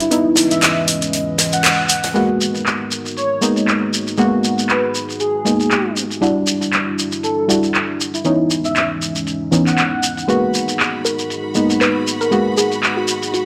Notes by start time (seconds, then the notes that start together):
0.00 E4, closed hi-hat, shekere
0.11 E3 G#3 B3 C#4 D#4 E4 B4 D#5, closed hi-hat, shekere
0.36 snare, closed hi-hat, open hi-hat, shekere
0.51 E5, closed hi-hat, shekere
0.62 E5, snare, clap, closed hi-hat, shekere
0.88 closed hi-hat, open hi-hat, shekere
1.02 closed hi-hat, shekere
1.13 closed hi-hat, shekere
1.38 snare, closed hi-hat, open hi-hat, shekere
1.52 F#5, closed hi-hat, shekere
1.63 snare, clap, closed hi-hat, shekere
1.89 closed hi-hat, open hi-hat, shekere
2.04 snare, closed hi-hat, shekere
2.14 G#3 A#3 B3 D#4 F#4 A#4, closed hi-hat, shekere
2.40 closed hi-hat, shekere
2.55 closed hi-hat, shekere
2.66 clap, closed hi-hat, shekere
2.91 shekere
3.05 closed hi-hat, shekere
3.17 C#5, closed hi-hat, shekere
3.41 G#3 A#3 B3 D#4, closed hi-hat, shekere
3.56 closed hi-hat, shekere
3.68 clap, closed hi-hat, shekere
3.93 shekere
4.07 closed hi-hat, shekere
4.17 G#3 A#3 B3 F#4 G#4, closed hi-hat, shekere
4.44 closed hi-hat, shekere
4.58 closed hi-hat, shekere
4.69 B4, clap, closed hi-hat, shekere
4.95 shekere
5.09 closed hi-hat, shekere
5.20 G#4, closed hi-hat, shekere
5.45 G#3 A#3 B3 D#4, closed hi-hat, shekere
5.60 closed hi-hat, shekere
5.71 clap, closed hi-hat, shekere
5.97 shekere
6.11 closed hi-hat, shekere
6.21 G3 D4 E4 F#4, closed hi-hat, shekere
6.47 closed hi-hat, shekere
6.61 closed hi-hat, shekere
6.73 clap, closed hi-hat, shekere
6.99 shekere
7.12 closed hi-hat, shekere
7.23 A4, closed hi-hat, shekere
7.48 G3 D4 E4 F#4, closed hi-hat, shekere
7.63 closed hi-hat, shekere
7.74 clap, closed hi-hat, shekere
8.01 shekere
8.14 E4, closed hi-hat, shekere
8.24 E3 G#3 B3 C#4 D#4 E4, closed hi-hat, shekere
8.50 closed hi-hat, shekere
8.65 E5, closed hi-hat, shekere
8.76 E5, clap, closed hi-hat, shekere
9.02 closed hi-hat, shekere
9.16 closed hi-hat, shekere
9.27 closed hi-hat, shekere
9.51 E3 B3 C#4 D#4, closed hi-hat, shekere
9.67 F#5, clap, closed hi-hat, shekere
9.78 clap, closed hi-hat, shekere
10.03 closed hi-hat, shekere
10.17 closed hi-hat, shekere
10.28 G#3 A#3 B3 F#4 G#4 B4 B5, closed hi-hat, shekere
10.54 closed hi-hat, shekere
10.68 closed hi-hat, shekere
10.79 clap, closed hi-hat, shekere
11.05 A#4, shekere
11.19 closed hi-hat, shekere
11.30 closed hi-hat, shekere
11.55 G#3 A#3 B3 D#4, closed hi-hat, shekere
11.70 closed hi-hat, shekere
11.81 B4, clap, closed hi-hat, shekere
12.07 shekere
12.21 A#4, closed hi-hat, shekere
12.31 G#3 A#3 B3 F#4, closed hi-hat, shekere
12.57 G#4, closed hi-hat, shekere
12.72 closed hi-hat, shekere
12.83 clap, closed hi-hat, shekere
12.97 F#4
13.08 shekere
13.23 closed hi-hat, shekere
13.34 F#4, closed hi-hat, shekere